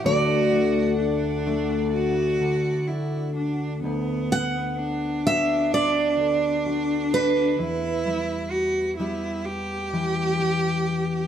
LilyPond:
<<
  \new Staff \with { instrumentName = "Steel-string acoustic guitar" } { \time 4/4 \key d \major \tempo 4 = 64 d''2. r4 | r8 fis''4 e''8 d''4. b'8~ | b'4. r2 r8 | }
  \new Staff \with { instrumentName = "Cello" } { \time 4/4 \key d \major fis'4 d'4 fis'4 e'8 d'8 | b4 d'2. | e'4 fis'8 e'8 g'2 | }
  \new Staff \with { instrumentName = "Analog synth pad" } { \time 4/4 \key d \major <d, d d'' fis''>1 | r1 | r1 | }
  \new Staff \with { instrumentName = "Steel-string acoustic guitar" } { \time 4/4 \key d \major << { <d a d' fis'>8 a4 <a d' fis'>4. fis'4 | r8 b4 <b d' fis'>4. fis'4 | r8 g4 <g b g'>4. g'4 | } \\ { d,2~ d,8 d4. | d,2~ d,8 d4. | e,2~ e,8 e4. | } >> }
>>